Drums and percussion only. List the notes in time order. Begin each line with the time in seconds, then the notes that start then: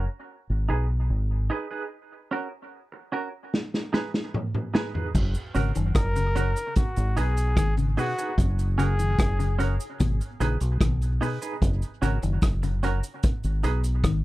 3.54 snare
3.74 snare
3.94 snare
4.14 snare
4.34 mid tom
4.55 mid tom
4.75 snare
4.95 floor tom
5.15 kick, crash, cabasa
5.35 closed hi-hat, cabasa
5.55 closed hi-hat, cabasa
5.75 closed hi-hat, cabasa
5.95 kick, cross-stick, closed hi-hat, cabasa
6.16 closed hi-hat, cabasa
6.36 closed hi-hat, cabasa
6.56 closed hi-hat, cabasa
6.76 kick, closed hi-hat, cabasa
6.96 closed hi-hat, cabasa
7.17 closed hi-hat, cabasa
7.37 closed hi-hat, cabasa
7.57 kick, cross-stick, closed hi-hat, cabasa
7.77 closed hi-hat, cabasa
7.97 open hi-hat, cabasa
8.19 closed hi-hat, cabasa
8.38 kick, closed hi-hat, cabasa
8.59 closed hi-hat, cabasa
8.79 closed hi-hat, cabasa
8.99 closed hi-hat, cabasa
9.19 kick, cross-stick, closed hi-hat, cabasa
9.40 closed hi-hat, cabasa
9.60 closed hi-hat, cabasa
9.80 closed hi-hat, cabasa
10.00 kick, closed hi-hat, cabasa
10.21 closed hi-hat, cabasa
10.41 closed hi-hat, cabasa
10.60 closed hi-hat, cabasa
10.81 kick, cross-stick, closed hi-hat, cabasa
11.02 closed hi-hat, cabasa
11.22 open hi-hat, cabasa
11.42 closed hi-hat, cabasa
11.62 kick, closed hi-hat, cabasa
11.82 closed hi-hat, cabasa
12.03 closed hi-hat, cabasa
12.22 closed hi-hat, cabasa
12.42 kick, cross-stick, closed hi-hat, cabasa
12.63 closed hi-hat, cabasa
12.83 closed hi-hat, cabasa
13.03 closed hi-hat, cabasa
13.23 kick, closed hi-hat, cabasa
13.44 closed hi-hat, cabasa
13.64 closed hi-hat, cabasa
13.84 closed hi-hat, cabasa
14.04 kick, cross-stick, closed hi-hat, cabasa